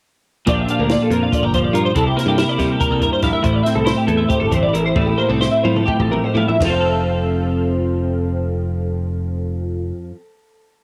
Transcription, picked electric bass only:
0, 0, Header, 1, 2, 480
1, 0, Start_track
1, 0, Key_signature, -1, "major"
1, 0, Tempo, 422833
1, 546, Time_signature, 7, 3, 24, 8
1, 4388, Tempo, 442804
1, 6308, Tempo, 481541
1, 7268, Tempo, 498339
1, 11349, End_track
2, 0, Start_track
2, 0, Title_t, "Picked electric bass"
2, 0, Program_c, 0, 34
2, 536, Note_on_c, 0, 34, 83
2, 725, Note_off_c, 0, 34, 0
2, 899, Note_on_c, 0, 38, 66
2, 1086, Note_off_c, 0, 38, 0
2, 1254, Note_on_c, 0, 41, 76
2, 1443, Note_off_c, 0, 41, 0
2, 1621, Note_on_c, 0, 31, 72
2, 1900, Note_off_c, 0, 31, 0
2, 1968, Note_on_c, 0, 43, 74
2, 2159, Note_off_c, 0, 43, 0
2, 2219, Note_on_c, 0, 36, 80
2, 2406, Note_off_c, 0, 36, 0
2, 2565, Note_on_c, 0, 43, 80
2, 2757, Note_off_c, 0, 43, 0
2, 2939, Note_on_c, 0, 48, 84
2, 3126, Note_off_c, 0, 48, 0
2, 3300, Note_on_c, 0, 36, 76
2, 3487, Note_off_c, 0, 36, 0
2, 3665, Note_on_c, 0, 34, 76
2, 3757, Note_off_c, 0, 34, 0
2, 3908, Note_on_c, 0, 33, 83
2, 4093, Note_off_c, 0, 33, 0
2, 4262, Note_on_c, 0, 36, 77
2, 4448, Note_off_c, 0, 36, 0
2, 4620, Note_on_c, 0, 40, 91
2, 4800, Note_off_c, 0, 40, 0
2, 4978, Note_on_c, 0, 31, 70
2, 5250, Note_off_c, 0, 31, 0
2, 5335, Note_on_c, 0, 33, 82
2, 5518, Note_off_c, 0, 33, 0
2, 5572, Note_on_c, 0, 33, 82
2, 5759, Note_off_c, 0, 33, 0
2, 5937, Note_on_c, 0, 36, 74
2, 6128, Note_off_c, 0, 36, 0
2, 6319, Note_on_c, 0, 45, 81
2, 6495, Note_off_c, 0, 45, 0
2, 6667, Note_on_c, 0, 33, 75
2, 6849, Note_off_c, 0, 33, 0
2, 7019, Note_on_c, 0, 45, 74
2, 7114, Note_off_c, 0, 45, 0
2, 7272, Note_on_c, 0, 29, 71
2, 10457, Note_off_c, 0, 29, 0
2, 11349, End_track
0, 0, End_of_file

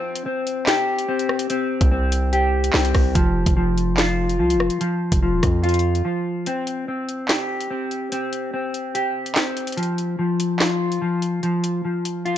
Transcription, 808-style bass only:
0, 0, Header, 1, 2, 480
1, 0, Start_track
1, 0, Tempo, 413793
1, 1739, Time_signature, 4, 2, 24, 8
1, 14360, End_track
2, 0, Start_track
2, 0, Title_t, "808-style bass"
2, 0, Program_c, 0, 38
2, 2099, Note_on_c, 0, 36, 101
2, 3136, Note_off_c, 0, 36, 0
2, 3177, Note_on_c, 0, 36, 110
2, 3408, Note_off_c, 0, 36, 0
2, 3418, Note_on_c, 0, 36, 109
2, 3649, Note_off_c, 0, 36, 0
2, 3657, Note_on_c, 0, 29, 110
2, 4004, Note_off_c, 0, 29, 0
2, 4018, Note_on_c, 0, 29, 102
2, 5098, Note_on_c, 0, 36, 99
2, 5115, Note_off_c, 0, 29, 0
2, 5278, Note_on_c, 0, 29, 101
2, 5296, Note_off_c, 0, 36, 0
2, 5449, Note_off_c, 0, 29, 0
2, 5938, Note_on_c, 0, 29, 108
2, 6179, Note_on_c, 0, 27, 100
2, 6196, Note_off_c, 0, 29, 0
2, 6293, Note_off_c, 0, 27, 0
2, 6298, Note_on_c, 0, 41, 101
2, 6989, Note_off_c, 0, 41, 0
2, 14360, End_track
0, 0, End_of_file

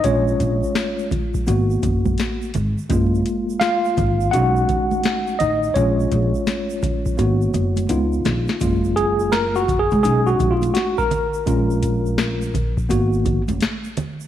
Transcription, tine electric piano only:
0, 0, Header, 1, 2, 480
1, 0, Start_track
1, 0, Key_signature, 6, "major"
1, 0, Tempo, 714286
1, 28, Time_signature, 4, 2, 24, 8
1, 9593, End_track
2, 0, Start_track
2, 0, Title_t, "Tine electric piano"
2, 0, Program_c, 0, 4
2, 25, Note_on_c, 0, 56, 56
2, 27, Note_on_c, 0, 61, 64
2, 27, Note_on_c, 0, 73, 80
2, 32, Note_on_c, 0, 65, 60
2, 721, Note_off_c, 0, 73, 0
2, 724, Note_off_c, 0, 61, 0
2, 959, Note_off_c, 0, 56, 0
2, 963, Note_off_c, 0, 65, 0
2, 986, Note_on_c, 0, 58, 52
2, 991, Note_on_c, 0, 59, 48
2, 994, Note_on_c, 0, 66, 57
2, 1680, Note_off_c, 0, 58, 0
2, 1682, Note_off_c, 0, 59, 0
2, 1684, Note_off_c, 0, 66, 0
2, 1945, Note_on_c, 0, 56, 55
2, 1949, Note_on_c, 0, 58, 54
2, 1954, Note_on_c, 0, 65, 57
2, 2417, Note_on_c, 0, 77, 102
2, 2425, Note_off_c, 0, 65, 0
2, 2433, Note_on_c, 0, 65, 76
2, 2879, Note_off_c, 0, 56, 0
2, 2882, Note_off_c, 0, 58, 0
2, 2884, Note_off_c, 0, 65, 0
2, 2898, Note_on_c, 0, 78, 96
2, 2904, Note_on_c, 0, 56, 51
2, 2907, Note_on_c, 0, 61, 45
2, 2912, Note_on_c, 0, 63, 56
2, 2914, Note_on_c, 0, 66, 75
2, 2917, Note_off_c, 0, 77, 0
2, 3599, Note_off_c, 0, 56, 0
2, 3600, Note_off_c, 0, 61, 0
2, 3603, Note_off_c, 0, 63, 0
2, 3604, Note_off_c, 0, 66, 0
2, 3621, Note_on_c, 0, 75, 81
2, 3636, Note_on_c, 0, 63, 64
2, 3645, Note_off_c, 0, 78, 0
2, 3847, Note_off_c, 0, 75, 0
2, 3856, Note_off_c, 0, 63, 0
2, 3859, Note_on_c, 0, 73, 77
2, 3865, Note_on_c, 0, 56, 56
2, 3870, Note_on_c, 0, 61, 61
2, 3872, Note_on_c, 0, 65, 57
2, 4799, Note_off_c, 0, 56, 0
2, 4803, Note_off_c, 0, 65, 0
2, 4820, Note_on_c, 0, 58, 50
2, 4825, Note_on_c, 0, 59, 52
2, 4829, Note_on_c, 0, 66, 53
2, 5276, Note_off_c, 0, 73, 0
2, 5280, Note_off_c, 0, 58, 0
2, 5282, Note_off_c, 0, 59, 0
2, 5283, Note_off_c, 0, 61, 0
2, 5284, Note_off_c, 0, 66, 0
2, 5302, Note_on_c, 0, 59, 60
2, 5305, Note_on_c, 0, 63, 51
2, 5309, Note_on_c, 0, 65, 59
2, 5761, Note_off_c, 0, 59, 0
2, 5762, Note_off_c, 0, 63, 0
2, 5764, Note_off_c, 0, 65, 0
2, 5783, Note_on_c, 0, 56, 50
2, 5788, Note_on_c, 0, 58, 47
2, 5791, Note_on_c, 0, 65, 57
2, 6021, Note_on_c, 0, 68, 90
2, 6262, Note_on_c, 0, 70, 96
2, 6272, Note_off_c, 0, 68, 0
2, 6422, Note_on_c, 0, 66, 91
2, 6430, Note_off_c, 0, 70, 0
2, 6478, Note_off_c, 0, 56, 0
2, 6481, Note_off_c, 0, 58, 0
2, 6483, Note_off_c, 0, 65, 0
2, 6573, Note_off_c, 0, 66, 0
2, 6582, Note_on_c, 0, 68, 88
2, 6733, Note_off_c, 0, 68, 0
2, 6741, Note_on_c, 0, 68, 82
2, 6743, Note_on_c, 0, 56, 51
2, 6745, Note_on_c, 0, 61, 47
2, 6750, Note_on_c, 0, 63, 52
2, 6898, Note_on_c, 0, 66, 81
2, 6909, Note_off_c, 0, 68, 0
2, 7060, Note_on_c, 0, 65, 75
2, 7068, Note_off_c, 0, 66, 0
2, 7217, Note_on_c, 0, 66, 84
2, 7229, Note_off_c, 0, 65, 0
2, 7371, Note_off_c, 0, 66, 0
2, 7379, Note_on_c, 0, 70, 96
2, 7438, Note_off_c, 0, 56, 0
2, 7439, Note_off_c, 0, 61, 0
2, 7442, Note_off_c, 0, 63, 0
2, 7701, Note_on_c, 0, 56, 51
2, 7705, Note_on_c, 0, 61, 52
2, 7708, Note_on_c, 0, 65, 55
2, 8397, Note_off_c, 0, 56, 0
2, 8399, Note_off_c, 0, 61, 0
2, 8401, Note_off_c, 0, 65, 0
2, 8557, Note_off_c, 0, 70, 0
2, 8662, Note_on_c, 0, 58, 57
2, 8665, Note_on_c, 0, 59, 49
2, 8669, Note_on_c, 0, 66, 61
2, 9010, Note_off_c, 0, 58, 0
2, 9012, Note_off_c, 0, 59, 0
2, 9014, Note_off_c, 0, 66, 0
2, 9593, End_track
0, 0, End_of_file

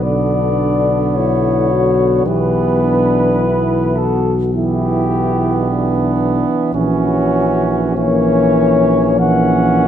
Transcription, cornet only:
0, 0, Header, 1, 2, 480
1, 0, Start_track
1, 0, Tempo, 1115242
1, 978, Time_signature, 4, 2, 24, 8
1, 2901, Tempo, 1224490
1, 3861, Tempo, 1153846
1, 4147, End_track
2, 0, Start_track
2, 0, Title_t, "Cornet"
2, 0, Program_c, 0, 56
2, 14, Note_on_c, 0, 74, 53
2, 493, Note_on_c, 0, 73, 51
2, 500, Note_off_c, 0, 74, 0
2, 967, Note_off_c, 0, 73, 0
2, 970, Note_on_c, 0, 71, 57
2, 1706, Note_on_c, 0, 69, 51
2, 1712, Note_off_c, 0, 71, 0
2, 1864, Note_off_c, 0, 69, 0
2, 1940, Note_on_c, 0, 67, 51
2, 2640, Note_off_c, 0, 67, 0
2, 2896, Note_on_c, 0, 66, 53
2, 3380, Note_on_c, 0, 73, 61
2, 3385, Note_off_c, 0, 66, 0
2, 3860, Note_on_c, 0, 78, 62
2, 3866, Note_off_c, 0, 73, 0
2, 4147, Note_off_c, 0, 78, 0
2, 4147, End_track
0, 0, End_of_file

